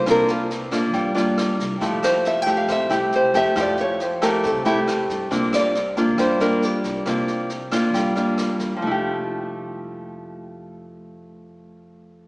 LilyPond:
<<
  \new Staff \with { instrumentName = "Nylon-string guitar" } { \time 4/4 \key f \major \tempo 4 = 137 bes'8 f'8 r2. | r8 c''8 \tuplet 3/2 { e''8 g''8 f''8 } e''8 g'8 c''8 e''8 | d''8 des''8 c''8 bes'8 a'8 e'8 r4 | r8 d''4. c''8 bes'8 g'4~ |
g'8 r2. r8 | r1 | r1 | }
  \new Staff \with { instrumentName = "Nylon-string guitar" } { \time 4/4 \key f \major << { <bes d' f'>4 r8 <bes d' f'>4 <bes d' f'>4. | <a e' g'>4. <a e' g'>4 <a e' g'>4 <a e' g'>8 | <a e' g'>4 r8 <a e' g'>4 <a e' g'>4. | <bes d' f'>4 r8 <bes d' f'>4 <bes d' f'>4. |
<bes d' f'>4 r8 <bes d' f'>4 <bes d' f'>4. | <f a e' g'>1~ | <f a e' g'>1 | } \\ { c2 g2 | f2 c2 | f2 c2 | c2 g2 |
c2 g2 | r1 | r1 | } >> }
  \new Staff \with { instrumentName = "Upright bass" } { \clef bass \time 4/4 \key f \major c,2 g,8 g,8 r8 c,8 | f,2 c,8 c,8 r8 f,8 | f,2 c,8 c,8 r8 g,8 | c,2 g,8 g,8 r8 c,8 |
c,2 g,8 g,8 r8 e,8 | f,,1~ | f,,1 | }
  \new DrumStaff \with { instrumentName = "Drums" } \drummode { \time 4/4 <bd ss sn>8 sn8 sn8 <bd ss sn>8 <bd sn>8 sn8 <ss sn>8 <bd sn>8 | <bd sn>8 <ss sn>8 sn8 <bd sn>8 <bd ss sn>8 sn8 sn8 <bd sn>8 | <bd ss sn>8 sn8 sn8 <bd ss sn>8 <bd sn>8 sn8 <ss sn>8 <bd sn>8 | <bd sn>8 <ss sn>8 sn8 <bd sn>8 <bd ss sn>8 sn8 sn8 <bd sn>8 |
<bd ss sn>8 sn8 sn8 <bd ss sn>8 <bd sn>8 sn8 <ss sn>8 <bd sn>8 | r4 r4 r4 r4 | r4 r4 r4 r4 | }
>>